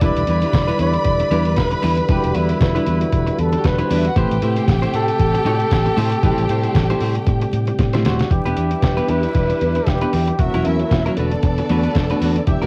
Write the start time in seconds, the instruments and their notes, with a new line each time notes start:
0.01 fingered electric bass E1, tonewheel organ D3 G3 E4, clean electric guitar G3 D4 E4 B4, string section B4 B5, flugelhorn D5, kick, closed hi-hat
0.16 fingered electric bass E1, closed hi-hat
0.27 fingered electric bass E2, clean electric guitar G3 D4 E4 B4, closed hi-hat
0.42 clean electric guitar G3 D4 E4 B4, closed hi-hat
0.53 fingered electric bass E1, kick, snare, closed hi-hat
0.68 clean electric guitar G3 D4 E4 B4, closed hi-hat
0.79 fingered electric bass E2, clean electric guitar G3 D4 E4 B4, flugelhorn D5, closed hi-hat
0.94 closed hi-hat
1.05 fingered electric bass E1, kick, closed hi-hat
1.20 muted clean electric guitar stroke, closed hi-hat
1.31 fingered electric bass E2, clean electric guitar G3 D4 E4 D5, closed hi-hat
1.45 muted clean electric guitar stroke, closed hi-hat
1.57 fingered electric bass E1, flugelhorn B4, kick, snare, closed hi-hat
1.71 muted clean electric guitar stroke, closed hi-hat
1.82 fingered electric bass E2, clean electric guitar G3 D4 E4 B4, snare, open hi-hat
1.97 muted clean electric guitar stroke, closed hi-hat
2.09 fingered electric bass E1, clean electric guitar G3 D4 E4 B4, tonewheel organ F#4, flugelhorn G4, kick, closed hi-hat
2.24 fingered electric bass E1, closed hi-hat
2.34 fingered electric bass E2, clean electric guitar G3 D4 E4 B4, flugelhorn E4, closed hi-hat
2.49 clean electric guitar G3 D4 E4 B4, closed hi-hat
2.61 fingered electric bass E1, muted clean electric guitar stroke, kick, snare, closed hi-hat
2.75 clean electric guitar G3 D4 E4 B4, closed hi-hat
2.86 fingered electric bass E2, clean electric guitar G3 D4 E4 B4, closed hi-hat
3.01 muted clean electric guitar stroke, closed hi-hat
3.12 fingered electric bass E1, muted clean electric guitar stroke, kick, closed hi-hat
3.27 muted clean electric guitar stroke, closed hi-hat
3.38 fingered electric bass E2, flugelhorn A4, closed hi-hat
3.52 string section G3 G4, muted clean electric guitar stroke, closed hi-hat
3.64 fingered electric bass E1, string section A3 A4, flugelhorn B4, muted clean electric guitar stroke, kick, snare, closed hi-hat
3.72 string section B3 B4
3.78 clean electric guitar G3 D4 E4 B4, string section C4 C5, closed hi-hat
3.89 fingered electric bass E2, clean electric guitar G3 D4 E4 B4, string section D4 D5, snare, open hi-hat
3.98 string section E4 E5
4.04 string section F#4 F#5, muted clean electric guitar stroke, closed hi-hat
4.16 fingered electric bass A1, tonewheel organ C3 A3 G4, clean electric guitar A3 E4 G4 C5, string section G4 G5, flugelhorn B4, kick, closed hi-hat
4.31 fingered electric bass A1, closed hi-hat
4.42 fingered electric bass A2, clean electric guitar A3 E4 G4 C5, closed hi-hat
4.56 clean electric guitar A3 E4 G4 C5, closed hi-hat
4.68 fingered electric bass A1, muted clean electric guitar stroke, kick, snare, closed hi-hat
4.82 clean electric guitar A3 E4 G4 C5, closed hi-hat
4.93 fingered electric bass A2, clean electric guitar A3 E4 G4 C5, flugelhorn A4, closed hi-hat
5.08 muted clean electric guitar stroke, closed hi-hat
5.20 fingered electric bass A1, kick, closed hi-hat
5.34 muted clean electric guitar stroke, closed hi-hat
5.45 fingered electric bass A2, clean electric guitar A3 E4 G4 D5, closed hi-hat
5.60 muted clean electric guitar stroke, closed hi-hat
5.71 fingered electric bass A1, kick, snare, closed hi-hat
5.86 muted clean electric guitar stroke, closed hi-hat
5.97 fingered electric bass A2, clean electric guitar A3 E4 G4 C5, snare, open hi-hat
6.12 muted clean electric guitar stroke, closed hi-hat
6.23 fingered electric bass A1, tonewheel organ G3, clean electric guitar A3 E4 G4 C5, kick, closed hi-hat
6.38 fingered electric bass A1, closed hi-hat
6.49 fingered electric bass A2, clean electric guitar A3 E4 G4 C5, closed hi-hat
6.63 clean electric guitar A3 E4 G4 C5, closed hi-hat
6.75 fingered electric bass A1, muted clean electric guitar stroke, kick, snare, closed hi-hat
6.90 clean electric guitar A3 E4 G4 C5, closed hi-hat
7.01 fingered electric bass A2, clean electric guitar A3 E4 G4 C5, open hi-hat
7.15 muted clean electric guitar stroke, closed hi-hat
7.27 fingered electric bass A2, muted clean electric guitar stroke, kick, closed hi-hat
7.41 muted clean electric guitar stroke, closed hi-hat
7.53 fingered electric bass A2, closed hi-hat
7.67 muted clean electric guitar stroke, closed hi-hat
7.79 fingered electric bass A2, muted clean electric guitar stroke, kick, snare, closed hi-hat
7.93 clean electric guitar A3 E4 G4 C5, snare, closed hi-hat
8.05 fingered electric bass D#1, clean electric guitar A3 E4 G4 C5, flugelhorn F#4, snare, closed hi-hat
8.19 muted clean electric guitar stroke, snare, closed hi-hat
8.31 fingered electric bass E1, tonewheel organ E3 D4 G4, string section G3 E4 B4, flugelhorn G4, muted clean electric guitar stroke, kick, closed hi-hat
8.45 fingered electric bass E1, clean electric guitar B3 D4 G4 B4, closed hi-hat
8.57 fingered electric bass E2, clean electric guitar B3 D4 G4 B4, closed hi-hat
8.71 muted clean electric guitar stroke, closed hi-hat
8.83 fingered electric bass E1, muted clean electric guitar stroke, kick, snare, closed hi-hat
8.97 clean electric guitar B3 D4 G4 B4, closed hi-hat
9.09 fingered electric bass E2, clean electric guitar B3 D4 G4 B4, flugelhorn B4, closed hi-hat
9.23 muted clean electric guitar stroke, closed hi-hat
9.35 fingered electric bass E1, muted clean electric guitar stroke, kick, closed hi-hat
9.49 muted clean electric guitar stroke, closed hi-hat
9.61 fingered electric bass E2, closed hi-hat
9.75 muted clean electric guitar stroke, closed hi-hat
9.87 fingered electric bass E1, flugelhorn G4, muted clean electric guitar stroke, kick, snare, closed hi-hat
10.01 clean electric guitar B3 D4 G4 B4, closed hi-hat
10.13 fingered electric bass E2, muted clean electric guitar stroke, snare, open hi-hat
10.28 muted clean electric guitar stroke, closed hi-hat
10.39 fingered electric bass E1, tonewheel organ E3 A#3 F#4, string section C#4 A#4 E5, flugelhorn F#4, muted clean electric guitar stroke, kick, closed hi-hat
10.54 fingered electric bass E1, clean electric guitar F#3 C#4 E4 A#4, closed hi-hat
10.65 fingered electric bass E2, clean electric guitar F#3 C#4 E4 A#4, flugelhorn E4, closed hi-hat
10.79 muted clean electric guitar stroke, closed hi-hat
10.91 fingered electric bass E1, muted clean electric guitar stroke, kick, snare, closed hi-hat
11.06 clean electric guitar F#3 C#4 E4 A#4, closed hi-hat
11.17 fingered electric bass E1, tonewheel organ D3 B3 A4, clean electric guitar A3 D4 F#4 B4, string section B3 A4 D5, closed hi-hat
11.31 muted clean electric guitar stroke, closed hi-hat
11.43 fingered electric bass E1, muted clean electric guitar stroke, kick, closed hi-hat
11.58 muted clean electric guitar stroke, closed hi-hat
11.69 fingered electric bass E2, clean electric guitar A3 D4 F#4 B4, closed hi-hat
11.83 clean electric guitar A3 D4 F#4 B4, closed hi-hat
11.95 fingered electric bass E1, muted clean electric guitar stroke, kick, snare, closed hi-hat
12.10 clean electric guitar A3 D4 F#4 B4, closed hi-hat
12.21 fingered electric bass E2, clean electric guitar A3 D4 F#4 B4, snare, open hi-hat
12.36 muted clean electric guitar stroke, closed hi-hat
12.47 fingered electric bass E1, tonewheel organ E3 D4 G4, string section B3 G4 E5, muted clean electric guitar stroke, kick, closed hi-hat
12.61 fingered electric bass E1, clean electric guitar B3 D4 G4 B4, closed hi-hat